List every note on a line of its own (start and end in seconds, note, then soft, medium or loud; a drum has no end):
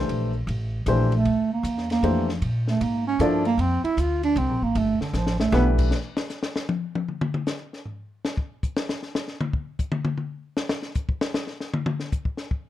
0.00 0.30 E3 medium
0.00 0.30 A3 medium
0.00 0.30 D4 medium
0.00 0.30 G4 medium
0.00 0.30 C5 medium
0.09 0.46 A#1 medium
0.09 ride medium
0.47 0.86 A1 medium
0.47 ride medium
0.86 1.24 A#1 loud
0.86 1.11 E3 medium
0.86 1.11 A3 medium
0.86 1.11 D4 medium
0.86 1.11 G4 medium
0.86 1.11 C5 medium
0.86 hi-hat pedal medium
0.86 ride medium
1.12 1.49 A3 loud
1.12 ride soft
1.25 1.63 D2 medium
1.25 ride medium
1.53 1.89 A#3 medium
1.63 2.02 E2 medium
1.63 hi-hat pedal medium
1.63 ride medium
1.78 snare soft
1.90 2.27 A#3 loud
1.90 snare soft
1.90 ride medium
2.03 2.41 F2 medium
2.03 2.27 E3 medium
2.03 2.27 A3 medium
2.03 2.27 D4 medium
2.03 2.27 G4 medium
2.03 2.27 C5 medium
2.03 ride medium
2.29 snare medium
2.42 2.80 A#2 medium
2.42 ride medium
2.67 2.84 A3 medium
2.67 snare soft
2.81 3.19 G#2 medium
2.81 3.07 A#3 medium
2.81 ride medium
3.08 3.24 C#4 loud
3.19 3.57 G2 medium
3.19 3.43 F3 medium
3.19 3.43 A#3 medium
3.19 3.45 D4 loud
3.19 3.43 E4 medium
3.19 3.44 A4 medium
3.19 3.44 D5 medium
3.19 hi-hat pedal medium
3.19 ride medium
3.45 3.62 A#3 loud
3.45 ride soft
3.58 3.82 F2 medium
3.58 3.84 C4 loud
3.58 ride medium
3.84 4.01 E4 loud
3.84 muted upright bass stroke soft
3.84 ride medium
3.97 4.35 D2 medium
3.97 4.23 F4 loud
3.97 hi-hat pedal medium
3.97 ride medium
4.23 4.40 D4 loud
4.23 ride medium
4.36 4.49 C2 loud
4.36 4.65 C4 loud
4.36 ride medium
4.49 4.61 A#1 medium
4.62 4.74 A1 medium
4.62 4.80 A#3 medium
4.75 4.99 G1 medium
4.75 5.01 A3 medium
4.75 ride medium
5.00 5.17 D3 medium
5.00 muted upright bass stroke soft
5.00 snare medium
5.13 5.51 A1 medium
5.13 5.39 F3 medium
5.13 snare medium
5.13 hi-hat pedal medium
5.27 snare medium
5.39 5.52 A3 medium
5.39 snare medium
5.52 5.90 B1 loud
5.52 5.92 E3 medium
5.52 5.92 A3 medium
5.52 5.69 B3 loud
5.52 5.92 D4 medium
5.52 5.92 G4 medium
5.52 5.92 B4 medium
5.52 snare medium
5.78 kick medium
5.78 crash medium
5.91 snare medium
6.17 snare medium
6.30 snare soft
6.30 hi-hat pedal medium
6.43 snare medium
6.56 snare medium
6.69 high tom loud
6.95 high tom medium
7.08 mid tom soft
7.21 mid tom loud
7.34 mid tom medium
7.47 snare medium
7.47 hi-hat pedal medium
7.73 snare soft
7.85 floor tom soft
8.25 snare medium
8.37 kick medium
8.63 kick medium
8.63 hi-hat pedal soft
8.77 snare loud
8.89 snare medium
9.03 snare soft
9.15 snare loud
9.28 snare soft
9.41 mid tom loud
9.53 kick medium
9.79 kick medium
9.79 hi-hat pedal medium
9.92 mid tom loud
10.05 mid tom loud
10.18 mid tom medium
10.57 snare loud
10.69 snare loud
10.82 snare medium
10.95 kick medium
10.95 hi-hat pedal medium
11.09 kick medium
11.21 snare loud
11.34 snare loud
11.47 snare soft
11.60 snare medium
11.74 mid tom loud
11.86 mid tom loud
12.00 snare soft
12.12 kick medium
12.12 hi-hat pedal medium
12.25 kick medium
12.37 snare medium
12.51 kick medium